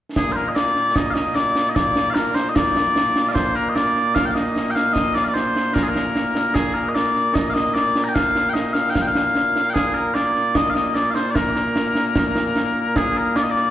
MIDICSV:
0, 0, Header, 1, 3, 480
1, 0, Start_track
1, 0, Tempo, 800000
1, 94, Time_signature, 2, 2, 24, 8
1, 8222, End_track
2, 0, Start_track
2, 0, Title_t, "Bagpipes"
2, 0, Program_c, 0, 109
2, 97, Note_on_c, 0, 46, 89
2, 97, Note_on_c, 0, 58, 89
2, 97, Note_on_c, 0, 68, 90
2, 191, Note_off_c, 0, 68, 0
2, 191, Note_on_c, 0, 72, 81
2, 213, Note_off_c, 0, 72, 0
2, 213, Note_on_c, 0, 70, 81
2, 289, Note_off_c, 0, 70, 0
2, 289, Note_on_c, 0, 75, 72
2, 331, Note_off_c, 0, 75, 0
2, 331, Note_on_c, 0, 74, 94
2, 570, Note_off_c, 0, 74, 0
2, 570, Note_on_c, 0, 75, 90
2, 663, Note_off_c, 0, 75, 0
2, 663, Note_on_c, 0, 77, 87
2, 684, Note_off_c, 0, 77, 0
2, 684, Note_on_c, 0, 75, 87
2, 808, Note_off_c, 0, 75, 0
2, 808, Note_on_c, 0, 74, 92
2, 1013, Note_off_c, 0, 74, 0
2, 1013, Note_on_c, 0, 75, 73
2, 1051, Note_off_c, 0, 75, 0
2, 1051, Note_on_c, 0, 74, 97
2, 1260, Note_off_c, 0, 74, 0
2, 1260, Note_on_c, 0, 77, 93
2, 1285, Note_off_c, 0, 77, 0
2, 1285, Note_on_c, 0, 70, 93
2, 1407, Note_off_c, 0, 70, 0
2, 1407, Note_on_c, 0, 72, 90
2, 1494, Note_off_c, 0, 72, 0
2, 1494, Note_on_c, 0, 75, 73
2, 1533, Note_off_c, 0, 75, 0
2, 1533, Note_on_c, 0, 74, 95
2, 1970, Note_off_c, 0, 74, 0
2, 1970, Note_on_c, 0, 77, 79
2, 1990, Note_off_c, 0, 77, 0
2, 1990, Note_on_c, 0, 74, 79
2, 2009, Note_off_c, 0, 74, 0
2, 2009, Note_on_c, 0, 72, 96
2, 2131, Note_off_c, 0, 72, 0
2, 2131, Note_on_c, 0, 70, 89
2, 2214, Note_off_c, 0, 70, 0
2, 2214, Note_on_c, 0, 75, 73
2, 2250, Note_off_c, 0, 75, 0
2, 2250, Note_on_c, 0, 74, 99
2, 2488, Note_off_c, 0, 74, 0
2, 2488, Note_on_c, 0, 77, 103
2, 2551, Note_off_c, 0, 77, 0
2, 2551, Note_on_c, 0, 79, 69
2, 2577, Note_off_c, 0, 79, 0
2, 2577, Note_on_c, 0, 77, 69
2, 2609, Note_off_c, 0, 77, 0
2, 2609, Note_on_c, 0, 75, 96
2, 2823, Note_off_c, 0, 75, 0
2, 2823, Note_on_c, 0, 79, 96
2, 2848, Note_off_c, 0, 79, 0
2, 2848, Note_on_c, 0, 77, 96
2, 2960, Note_off_c, 0, 77, 0
2, 2960, Note_on_c, 0, 75, 108
2, 3085, Note_off_c, 0, 75, 0
2, 3085, Note_on_c, 0, 74, 89
2, 3145, Note_off_c, 0, 74, 0
2, 3145, Note_on_c, 0, 77, 72
2, 3171, Note_off_c, 0, 77, 0
2, 3171, Note_on_c, 0, 74, 72
2, 3203, Note_off_c, 0, 74, 0
2, 3203, Note_on_c, 0, 72, 96
2, 3441, Note_off_c, 0, 72, 0
2, 3441, Note_on_c, 0, 70, 87
2, 3497, Note_off_c, 0, 70, 0
2, 3497, Note_on_c, 0, 68, 74
2, 3528, Note_off_c, 0, 68, 0
2, 3528, Note_on_c, 0, 70, 85
2, 3924, Note_off_c, 0, 70, 0
2, 3924, Note_on_c, 0, 68, 90
2, 4042, Note_off_c, 0, 68, 0
2, 4042, Note_on_c, 0, 70, 88
2, 4131, Note_off_c, 0, 70, 0
2, 4131, Note_on_c, 0, 75, 69
2, 4167, Note_off_c, 0, 75, 0
2, 4167, Note_on_c, 0, 74, 94
2, 4404, Note_off_c, 0, 74, 0
2, 4404, Note_on_c, 0, 75, 95
2, 4501, Note_off_c, 0, 75, 0
2, 4501, Note_on_c, 0, 77, 86
2, 4524, Note_off_c, 0, 77, 0
2, 4524, Note_on_c, 0, 75, 86
2, 4642, Note_off_c, 0, 75, 0
2, 4642, Note_on_c, 0, 74, 94
2, 4824, Note_off_c, 0, 74, 0
2, 4824, Note_on_c, 0, 82, 83
2, 4850, Note_off_c, 0, 82, 0
2, 4850, Note_on_c, 0, 79, 83
2, 4886, Note_off_c, 0, 79, 0
2, 4886, Note_on_c, 0, 77, 105
2, 5095, Note_off_c, 0, 77, 0
2, 5095, Note_on_c, 0, 79, 94
2, 5120, Note_off_c, 0, 79, 0
2, 5120, Note_on_c, 0, 75, 94
2, 5240, Note_off_c, 0, 75, 0
2, 5240, Note_on_c, 0, 77, 88
2, 5338, Note_off_c, 0, 77, 0
2, 5338, Note_on_c, 0, 79, 97
2, 5363, Note_off_c, 0, 79, 0
2, 5363, Note_on_c, 0, 77, 97
2, 5409, Note_off_c, 0, 77, 0
2, 5409, Note_on_c, 0, 79, 77
2, 5445, Note_off_c, 0, 79, 0
2, 5445, Note_on_c, 0, 77, 92
2, 5818, Note_off_c, 0, 77, 0
2, 5818, Note_on_c, 0, 79, 92
2, 5842, Note_off_c, 0, 79, 0
2, 5842, Note_on_c, 0, 68, 92
2, 5963, Note_off_c, 0, 68, 0
2, 5963, Note_on_c, 0, 70, 82
2, 6085, Note_off_c, 0, 70, 0
2, 6085, Note_on_c, 0, 74, 91
2, 6330, Note_off_c, 0, 74, 0
2, 6330, Note_on_c, 0, 75, 92
2, 6421, Note_off_c, 0, 75, 0
2, 6421, Note_on_c, 0, 77, 85
2, 6447, Note_off_c, 0, 77, 0
2, 6447, Note_on_c, 0, 75, 85
2, 6568, Note_off_c, 0, 75, 0
2, 6568, Note_on_c, 0, 74, 84
2, 6662, Note_off_c, 0, 74, 0
2, 6662, Note_on_c, 0, 77, 81
2, 6688, Note_off_c, 0, 77, 0
2, 6688, Note_on_c, 0, 72, 81
2, 6784, Note_off_c, 0, 72, 0
2, 6784, Note_on_c, 0, 74, 83
2, 6810, Note_off_c, 0, 74, 0
2, 6810, Note_on_c, 0, 70, 83
2, 7778, Note_off_c, 0, 70, 0
2, 7778, Note_on_c, 0, 68, 93
2, 7902, Note_off_c, 0, 68, 0
2, 7902, Note_on_c, 0, 70, 89
2, 8016, Note_off_c, 0, 70, 0
2, 8016, Note_on_c, 0, 74, 97
2, 8055, Note_off_c, 0, 74, 0
2, 8055, Note_on_c, 0, 75, 80
2, 8102, Note_off_c, 0, 75, 0
2, 8102, Note_on_c, 0, 74, 93
2, 8222, Note_off_c, 0, 46, 0
2, 8222, Note_off_c, 0, 58, 0
2, 8222, Note_off_c, 0, 74, 0
2, 8222, End_track
3, 0, Start_track
3, 0, Title_t, "Drums"
3, 97, Note_on_c, 9, 35, 60
3, 97, Note_on_c, 9, 38, 95
3, 157, Note_off_c, 9, 35, 0
3, 157, Note_off_c, 9, 38, 0
3, 216, Note_on_c, 9, 38, 28
3, 276, Note_off_c, 9, 38, 0
3, 337, Note_on_c, 9, 38, 80
3, 397, Note_off_c, 9, 38, 0
3, 456, Note_on_c, 9, 38, 28
3, 516, Note_off_c, 9, 38, 0
3, 574, Note_on_c, 9, 35, 58
3, 574, Note_on_c, 9, 38, 102
3, 634, Note_off_c, 9, 35, 0
3, 634, Note_off_c, 9, 38, 0
3, 693, Note_on_c, 9, 38, 74
3, 753, Note_off_c, 9, 38, 0
3, 814, Note_on_c, 9, 38, 72
3, 874, Note_off_c, 9, 38, 0
3, 934, Note_on_c, 9, 38, 64
3, 994, Note_off_c, 9, 38, 0
3, 1056, Note_on_c, 9, 35, 58
3, 1056, Note_on_c, 9, 38, 88
3, 1116, Note_off_c, 9, 35, 0
3, 1116, Note_off_c, 9, 38, 0
3, 1175, Note_on_c, 9, 38, 67
3, 1235, Note_off_c, 9, 38, 0
3, 1294, Note_on_c, 9, 38, 81
3, 1354, Note_off_c, 9, 38, 0
3, 1414, Note_on_c, 9, 38, 67
3, 1474, Note_off_c, 9, 38, 0
3, 1535, Note_on_c, 9, 35, 62
3, 1535, Note_on_c, 9, 38, 107
3, 1595, Note_off_c, 9, 35, 0
3, 1595, Note_off_c, 9, 38, 0
3, 1655, Note_on_c, 9, 38, 79
3, 1715, Note_off_c, 9, 38, 0
3, 1776, Note_on_c, 9, 38, 76
3, 1836, Note_off_c, 9, 38, 0
3, 1895, Note_on_c, 9, 38, 71
3, 1955, Note_off_c, 9, 38, 0
3, 2013, Note_on_c, 9, 35, 60
3, 2013, Note_on_c, 9, 38, 89
3, 2073, Note_off_c, 9, 35, 0
3, 2073, Note_off_c, 9, 38, 0
3, 2133, Note_on_c, 9, 38, 29
3, 2193, Note_off_c, 9, 38, 0
3, 2253, Note_on_c, 9, 38, 79
3, 2313, Note_off_c, 9, 38, 0
3, 2375, Note_on_c, 9, 38, 26
3, 2435, Note_off_c, 9, 38, 0
3, 2495, Note_on_c, 9, 35, 54
3, 2495, Note_on_c, 9, 38, 91
3, 2555, Note_off_c, 9, 35, 0
3, 2555, Note_off_c, 9, 38, 0
3, 2615, Note_on_c, 9, 38, 66
3, 2675, Note_off_c, 9, 38, 0
3, 2737, Note_on_c, 9, 38, 67
3, 2797, Note_off_c, 9, 38, 0
3, 2857, Note_on_c, 9, 38, 65
3, 2917, Note_off_c, 9, 38, 0
3, 2974, Note_on_c, 9, 35, 52
3, 2974, Note_on_c, 9, 38, 81
3, 3034, Note_off_c, 9, 35, 0
3, 3034, Note_off_c, 9, 38, 0
3, 3094, Note_on_c, 9, 38, 63
3, 3154, Note_off_c, 9, 38, 0
3, 3214, Note_on_c, 9, 38, 68
3, 3274, Note_off_c, 9, 38, 0
3, 3337, Note_on_c, 9, 38, 61
3, 3397, Note_off_c, 9, 38, 0
3, 3454, Note_on_c, 9, 35, 53
3, 3454, Note_on_c, 9, 38, 95
3, 3514, Note_off_c, 9, 35, 0
3, 3514, Note_off_c, 9, 38, 0
3, 3574, Note_on_c, 9, 38, 70
3, 3634, Note_off_c, 9, 38, 0
3, 3693, Note_on_c, 9, 38, 69
3, 3753, Note_off_c, 9, 38, 0
3, 3811, Note_on_c, 9, 38, 66
3, 3871, Note_off_c, 9, 38, 0
3, 3932, Note_on_c, 9, 35, 55
3, 3932, Note_on_c, 9, 38, 89
3, 3992, Note_off_c, 9, 35, 0
3, 3992, Note_off_c, 9, 38, 0
3, 4054, Note_on_c, 9, 38, 27
3, 4114, Note_off_c, 9, 38, 0
3, 4174, Note_on_c, 9, 38, 76
3, 4234, Note_off_c, 9, 38, 0
3, 4293, Note_on_c, 9, 38, 27
3, 4353, Note_off_c, 9, 38, 0
3, 4412, Note_on_c, 9, 35, 56
3, 4412, Note_on_c, 9, 38, 104
3, 4472, Note_off_c, 9, 35, 0
3, 4472, Note_off_c, 9, 38, 0
3, 4535, Note_on_c, 9, 38, 74
3, 4595, Note_off_c, 9, 38, 0
3, 4655, Note_on_c, 9, 38, 69
3, 4715, Note_off_c, 9, 38, 0
3, 4773, Note_on_c, 9, 38, 65
3, 4833, Note_off_c, 9, 38, 0
3, 4893, Note_on_c, 9, 35, 54
3, 4893, Note_on_c, 9, 38, 90
3, 4953, Note_off_c, 9, 35, 0
3, 4953, Note_off_c, 9, 38, 0
3, 5013, Note_on_c, 9, 38, 64
3, 5073, Note_off_c, 9, 38, 0
3, 5131, Note_on_c, 9, 38, 75
3, 5191, Note_off_c, 9, 38, 0
3, 5250, Note_on_c, 9, 38, 64
3, 5310, Note_off_c, 9, 38, 0
3, 5372, Note_on_c, 9, 35, 52
3, 5372, Note_on_c, 9, 38, 92
3, 5432, Note_off_c, 9, 35, 0
3, 5432, Note_off_c, 9, 38, 0
3, 5491, Note_on_c, 9, 38, 68
3, 5551, Note_off_c, 9, 38, 0
3, 5612, Note_on_c, 9, 38, 65
3, 5672, Note_off_c, 9, 38, 0
3, 5734, Note_on_c, 9, 38, 60
3, 5794, Note_off_c, 9, 38, 0
3, 5854, Note_on_c, 9, 35, 49
3, 5854, Note_on_c, 9, 38, 77
3, 5914, Note_off_c, 9, 35, 0
3, 5914, Note_off_c, 9, 38, 0
3, 5973, Note_on_c, 9, 38, 24
3, 6033, Note_off_c, 9, 38, 0
3, 6092, Note_on_c, 9, 38, 70
3, 6152, Note_off_c, 9, 38, 0
3, 6213, Note_on_c, 9, 38, 24
3, 6273, Note_off_c, 9, 38, 0
3, 6331, Note_on_c, 9, 35, 52
3, 6331, Note_on_c, 9, 38, 94
3, 6391, Note_off_c, 9, 35, 0
3, 6391, Note_off_c, 9, 38, 0
3, 6451, Note_on_c, 9, 38, 62
3, 6511, Note_off_c, 9, 38, 0
3, 6572, Note_on_c, 9, 38, 66
3, 6632, Note_off_c, 9, 38, 0
3, 6694, Note_on_c, 9, 38, 63
3, 6754, Note_off_c, 9, 38, 0
3, 6813, Note_on_c, 9, 35, 53
3, 6813, Note_on_c, 9, 38, 88
3, 6873, Note_off_c, 9, 35, 0
3, 6873, Note_off_c, 9, 38, 0
3, 6933, Note_on_c, 9, 38, 62
3, 6993, Note_off_c, 9, 38, 0
3, 7054, Note_on_c, 9, 38, 75
3, 7114, Note_off_c, 9, 38, 0
3, 7172, Note_on_c, 9, 38, 63
3, 7232, Note_off_c, 9, 38, 0
3, 7293, Note_on_c, 9, 35, 57
3, 7293, Note_on_c, 9, 38, 97
3, 7353, Note_off_c, 9, 35, 0
3, 7353, Note_off_c, 9, 38, 0
3, 7413, Note_on_c, 9, 38, 71
3, 7473, Note_off_c, 9, 38, 0
3, 7534, Note_on_c, 9, 38, 70
3, 7594, Note_off_c, 9, 38, 0
3, 7775, Note_on_c, 9, 35, 62
3, 7775, Note_on_c, 9, 38, 93
3, 7835, Note_off_c, 9, 35, 0
3, 7835, Note_off_c, 9, 38, 0
3, 7896, Note_on_c, 9, 38, 30
3, 7956, Note_off_c, 9, 38, 0
3, 8016, Note_on_c, 9, 38, 78
3, 8076, Note_off_c, 9, 38, 0
3, 8135, Note_on_c, 9, 38, 27
3, 8195, Note_off_c, 9, 38, 0
3, 8222, End_track
0, 0, End_of_file